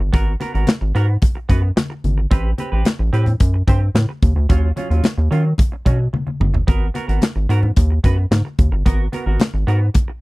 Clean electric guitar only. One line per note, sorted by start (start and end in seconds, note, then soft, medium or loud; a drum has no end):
0.00 muted clean electric guitar stroke soft
0.13 0.31 B3 medium
0.13 0.32 F#4 medium
0.13 0.32 A#4 medium
0.40 0.55 B3 medium
0.40 0.54 F#4 medium
0.40 0.53 A#4 medium
0.54 0.69 B3 soft
0.54 0.69 F#4 medium
0.54 0.68 A#4 medium
0.81 muted clean electric guitar stroke soft
0.95 1.13 B3 medium
0.95 1.08 F#4 loud
0.95 1.07 A#4 loud
1.08 muted clean electric guitar stroke soft
1.22 muted clean electric guitar stroke soft
1.35 muted clean electric guitar stroke soft
1.49 1.68 B3 medium
1.49 1.63 F#4 medium
1.49 1.62 B4 medium
1.63 muted clean electric guitar stroke soft
1.76 muted clean electric guitar stroke soft
1.90 muted clean electric guitar stroke medium
2.18 muted clean electric guitar stroke soft
2.31 2.49 C4 medium
2.31 2.50 G4 medium
2.31 2.50 B4 medium
2.58 2.73 C4 medium
2.58 2.72 G4 medium
2.58 2.71 B4 medium
2.72 2.87 C4 medium
2.72 2.87 G4 medium
2.72 2.86 B4 medium
2.99 muted clean electric guitar stroke soft
3.13 3.31 C4 medium
3.13 3.27 G4 medium
3.13 3.26 B4 medium
3.27 muted clean electric guitar stroke medium
3.40 muted clean electric guitar stroke soft
3.54 muted clean electric guitar stroke soft
3.67 3.86 C4 medium
3.67 3.82 G4 medium
3.67 3.81 C5 medium
3.81 muted clean electric guitar stroke soft
3.95 muted clean electric guitar stroke soft
4.09 muted clean electric guitar stroke soft
4.36 muted clean electric guitar stroke soft
4.49 4.68 F#3 medium
4.49 4.68 C#4 medium
4.49 4.69 F4 medium
4.76 4.91 F#3 medium
4.76 4.90 C#4 medium
4.76 4.89 F4 medium
4.90 5.06 F#3 medium
4.90 5.05 C#4 soft
4.90 5.05 F4 medium
5.18 muted clean electric guitar stroke soft
5.31 5.49 F#3 medium
5.31 5.45 C#4 medium
5.31 5.44 F4 medium
5.45 muted clean electric guitar stroke medium
5.58 muted clean electric guitar stroke soft
5.72 muted clean electric guitar stroke soft
5.86 6.04 F#3 medium
5.86 5.99 C#4 medium
5.86 5.99 F#4 medium
5.99 muted clean electric guitar stroke soft
6.13 muted clean electric guitar stroke soft
6.27 muted clean electric guitar stroke soft
6.54 muted clean electric guitar stroke soft
6.67 6.86 B3 medium
6.67 6.86 F#4 medium
6.67 6.87 A#4 medium
6.94 7.09 B3 medium
6.94 7.08 F#4 medium
6.94 7.07 A#4 medium
7.08 7.24 B3 medium
7.08 7.23 F#4 medium
7.08 7.23 A#4 medium
7.36 muted clean electric guitar stroke soft
7.49 7.68 B3 medium
7.49 7.63 F#4 medium
7.49 7.62 A#4 medium
7.63 muted clean electric guitar stroke soft
7.77 muted clean electric guitar stroke soft
7.90 muted clean electric guitar stroke soft
8.04 8.22 B3 medium
8.04 8.18 F#4 medium
8.04 8.17 B4 medium
8.18 muted clean electric guitar stroke soft
8.31 muted clean electric guitar stroke soft
8.45 muted clean electric guitar stroke soft
8.72 muted clean electric guitar stroke soft
8.86 9.04 B3 medium
8.86 9.05 F#4 medium
8.86 9.05 A#4 medium
9.12 9.27 B3 medium
9.12 9.26 F#4 medium
9.12 9.25 A#4 medium
9.26 9.42 B3 soft
9.26 9.41 F#4 medium
9.26 9.41 A#4 medium
9.54 muted clean electric guitar stroke soft
9.67 9.86 B3 medium
9.67 9.81 F#4 medium
9.67 9.80 A#4 medium
9.81 muted clean electric guitar stroke soft
9.94 muted clean electric guitar stroke soft
10.08 muted clean electric guitar stroke soft